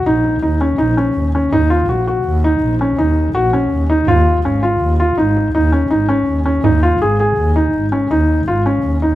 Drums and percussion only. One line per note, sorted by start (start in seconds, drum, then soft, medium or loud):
0.24 frame drum soft
1.34 frame drum soft
1.52 frame drum medium
2.07 frame drum soft
2.79 frame drum soft
4.07 frame drum medium
4.45 frame drum soft
4.63 frame drum soft
5.00 frame drum soft
5.36 frame drum soft
5.55 frame drum soft
6.45 frame drum soft
6.64 frame drum medium
7.92 frame drum soft
8.11 frame drum soft
9.02 frame drum soft